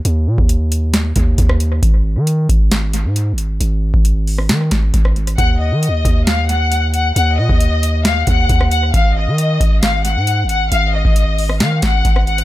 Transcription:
<<
  \new Staff \with { instrumentName = "Violin section" } { \time 4/4 \key aes \dorian \tempo 4 = 135 r1 | r1 | r1 | ges''8 ees''4. f''8 ges''4 ges''8 |
ges''8 ees''4. f''8 ges''4 ges''8 | f''8 ees''4. f''8 ges''4 ges''8 | f''8 ees''4. f''8 ges''4 ges''8 | }
  \new Staff \with { instrumentName = "808-style bass" } { \clef bass \time 4/4 \key aes \dorian ees,8 bes,16 ees,4.~ ees,16 ees,8 ees,4 | aes,,8. ees8. aes,,4~ aes,,16 aes,8~ aes,32 aes,,8~ aes,,32 | aes,,8. aes,,4~ aes,,16 ees8 aes,,8 aes,,4 | ees,8. ees16. ees,16. ees,2~ ees,8 |
ees,8 bes,16 ees,4.~ ees,16 ees,8 ees,4 | aes,,8. ees8. aes,,4~ aes,,16 aes,8~ aes,32 aes,,8~ aes,,32 | aes,,8. aes,,4~ aes,,16 ees8 aes,,8 aes,,4 | }
  \new DrumStaff \with { instrumentName = "Drums" } \drummode { \time 4/4 hh8. bd16 hh8 hh8 <hh sn>8 <hh bd>8 <hh bd>16 ss16 hh8 | <hh bd>4 hh8 <hh bd>8 <hh sn>8 hh8 hh8 hh8 | hh8. bd16 hh8 hho16 ss16 <hh sn>8 <hh bd sn>8 <hh bd>16 ss16 hh16 hh16 | <hh bd>4 hh8 <hh bd>8 <hh sn>8 hh8 hh8 hh8 |
hh8. bd16 hh8 hh8 <hh sn>8 <hh bd>8 <hh bd>16 ss16 hh8 | <hh bd>4 hh8 <hh bd>8 <hh sn>8 hh8 hh8 hh8 | hh8. bd16 hh8 hho16 ss16 <hh sn>8 <hh bd sn>8 <hh bd>16 ss16 hh16 hh16 | }
>>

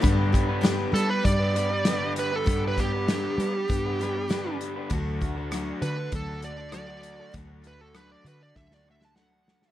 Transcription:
<<
  \new Staff \with { instrumentName = "Lead electric guitar" } { \time 4/4 \key g \major \tempo 4 = 99 r4. a'16 b'16 d''4. b'16 a'16~ | a'16 b'16 g'2. r8 | r4. b'8 a'8 d''8 d''4 | r8 b'16 a'16 b'16 d''16 b'16 d''16 e''16 d''16 e''16 a''16 fis''4 | }
  \new Staff \with { instrumentName = "Overdriven electric guitar" } { \time 4/4 \key g \major <g b d' b'>8. <b d' b'>16 <g b d' b'>8 <g b d' b'>8. <b d' b'>16 <g b d' b'>8 <g b d' b'>16 <b d' b'>8 <b d' b'>16 | <g b d' b'>8. <b d' b'>16 <g b d' b'>8 <g b d' b'>8. <b d' b'>16 <g b d' b'>8 <g b d' b'>16 <b d' b'>8 <b d' b'>16 | <d d' fis' a'>8. <d' fis' a'>16 <d d' fis' a'>8 <d d' fis' a'>8. <d' fis' a'>16 <d d' fis' a'>8 <d d' fis' a'>16 <d' fis' a'>8 <d' fis' a'>16 | <d d' fis' a'>8. <d' fis' a'>16 <d d' fis' a'>8 <d d' fis' a'>8. <d' fis' a'>16 <d d' fis' a'>8 <d d' fis' a'>16 <d' fis' a'>8 <d' fis' a'>16 | }
  \new Staff \with { instrumentName = "Steel-string acoustic guitar" } { \time 4/4 \key g \major <g, d g b d' g'>8 <g b d' g'>8 <g, d g b d' g'>8 <g b d' g'>8 <g b d' g'>8 <g b d' g'>8 <g, d g b d' g'>4 | <g, d g b d' g'>8 <g b d' g'>8 <g, d g b d' g'>8 <g b d' g'>8 <g b d' g'>8 <g b d' g'>8 <g, d g b d' g'>4 | <d fis a d' fis'>8 <a d' fis'>8 <d fis a d' fis'>8 <a d' fis'>8 <fis a d' fis'>8 <a d' fis'>8 <d fis a d' fis'>4 | <d fis a d' fis'>8 <a d' fis'>8 <d fis a d' fis'>8 <a d' fis'>8 <fis a d' fis'>8 <a d' fis'>8 <d fis a d' fis'>4 | }
  \new Staff \with { instrumentName = "Picked electric bass" } { \clef bass \time 4/4 \key g \major g,4. g8 g,2 | g,4. g8 g,2 | d,4. d8 d,2 | d,4. d8 d,2 | }
  \new DrumStaff \with { instrumentName = "Drums" } \drummode { \time 4/4 <hh bd>8 <hh bd>8 <hh sn>8 hh8 <hh bd>8 hh8 <hh sn>8 hh8 | <hh bd>8 <hh bd>8 <hh sn>8 hh8 <hh bd>8 hh8 <hh sn>8 hh8 | <hh bd>8 <hh bd>8 <hh ss>8 hh8 <hh bd>8 hh8 <hh ss>8 hh8 | <hh bd>8 hh8 <hh ss>8 hh8 <bd sn>16 sn8 sn16 sn8 sn16 sn16 | }
>>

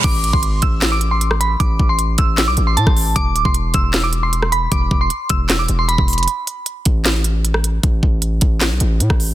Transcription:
<<
  \new Staff \with { instrumentName = "Synth bell" } { \time 4/4 \key e \phrygian \tempo 4 = 154 d'''8. c'''8. e'''8. d'''8 c'''8. b''8 | d'''8. c'''8. e'''8. d'''8 c'''16 a''4 | d'''8. c'''8. e'''8. d'''8 c'''8. b''8 | d'''8. c'''8. e'''8. d'''8 c'''16 b''4 |
r1 | r1 | }
  \new Staff \with { instrumentName = "808-style bass" } { \clef bass \time 4/4 \key e \phrygian a,,8. gis,,8. a,,2~ a,,8 | a,,8 a,,4 a,,8. b,,16 a,,8 a,16 a,,8. | e,,8 d,,16 e,,8. e,,2~ e,,8 | e,,8 e,,8 r8 e,,4 e,,8. e,,8 f,,16 |
r4. a,,2~ a,,8 | a,,8 a,,4 a,,8. b,,16 a,,8 a,16 a,,8. | }
  \new DrumStaff \with { instrumentName = "Drums" } \drummode { \time 4/4 <cymc hh bd>8 hh16 bd16 hh8 <hh bd>8 <hc hh sn>8 hh8 hh16 ss16 hh8 | <hh bd>8 bd8 hh8 <hh bd>8 <hc hh sn>8 hh8 hh16 <bd ss>16 hho8 | <hh bd>8 hh16 bd16 hh8 <hh bd>8 <hc hh sn>8 hh8 hh16 ss16 hh8 | <hh bd>8 bd8 hh8 <hh bd>8 <hc hh sn>8 hh8 hh16 bd16 <hh hho>32 hh32 hh32 hh32 |
hh8 hh8 hh8 <hh bd>8 <hc hh sn>8 hh8 hh16 ss16 hh8 | <hh bd>8 bd8 hh8 <hh bd>8 <hc hh sn>8 hh8 hh16 <bd ss>16 hho8 | }
>>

